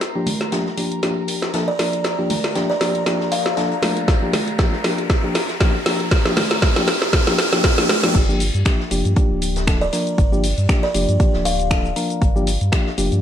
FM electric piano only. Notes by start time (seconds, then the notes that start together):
0.15 F3 A#3 D4 G4
0.52 F3 A#3 D4 G4
0.77 F3 A#3 D4 G4
1.03 F3 A#3 D4 G4
1.54 F3 A#3 D4 A4
1.79 F3 A#3 D4 A#4
2.19 F3 A#3 D4 G4
2.55 F3 A#3 D4 G4
2.81 F3 A#3 D4 G4
3.06 F3 A#3 D4 G4
3.57 F3 A#3 D4 A4
3.83 F3 A#3 D4 A#4
4.22 F3 A#3 D4 G4
4.59 F3 A#3 D4 G4
4.84 F3 A#3 D4 G4
5.24 F3 A#3 D4 G4
5.60 F3 A#3 D4 G4
5.86 F3 A#3 D4 G4
6.25 F3 A#3 D4 G4
6.76 F3 A#3 D4 G4
7.27 F3 A#3 D4 G4
7.53 F3 A#3 D4 G4
7.78 F3 A#3 D4 G4
8.03 F3 A#3 D4 G4
8.29 F3 A#3 D4 G4
8.66 F3 A#3 D4 G4
8.91 F3 A#3 D4 G4
9.16 F3 A#3 D4 G4
9.67 F3 A#3 D4 A4
9.93 F3 A#3 D4 A#4
10.32 F3 A#3 D4 G4
10.69 F3 A#3 D4 G4
10.94 F3 A#3 D4 G4
11.20 F3 A#3 D4 G4
11.71 F3 A#3 D4 A4
11.96 F3 A#3 D4 A#4
12.36 F3 A#3 D4 G4
12.72 F3 A#3 D4 G4
12.98 F3 A#3 D4 G4